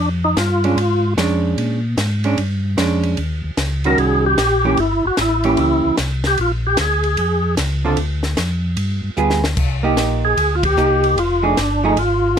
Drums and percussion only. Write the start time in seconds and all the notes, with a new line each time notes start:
0.37 snare, hi-hat pedal, ride
0.64 ride
0.78 ride
1.18 snare, hi-hat pedal, ride
1.58 ride
1.98 snare, hi-hat pedal, ride
2.24 ride
2.38 ride
2.78 snare, hi-hat pedal, ride
3.03 ride
3.17 ride
3.57 snare, hi-hat pedal, ride
3.84 ride
3.98 ride
4.38 snare, hi-hat pedal, ride
4.77 ride
5.17 snare, hi-hat pedal, ride
5.44 ride
5.57 ride
5.97 snare, hi-hat pedal, ride
6.24 snare, ride
6.37 ride
6.77 snare, hi-hat pedal, ride
7.04 ride
7.17 ride
7.57 snare, hi-hat pedal, ride
7.97 ride
8.23 snare
8.37 snare, hi-hat pedal, ride
8.77 ride
9.17 hi-hat pedal
9.30 snare
9.44 snare
9.57 kick, crash
9.97 snare, hi-hat pedal, ride
10.37 ride
10.63 kick, ride
10.77 hi-hat pedal
11.04 ride
11.18 ride
11.57 snare, hi-hat pedal, ride
11.97 ride